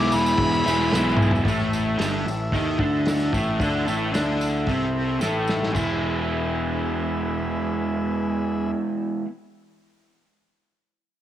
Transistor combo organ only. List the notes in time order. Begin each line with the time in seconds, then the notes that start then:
Already playing: G#4 B4 E5
1.44 E4 A4 E5
5.73 G#4 B4 E5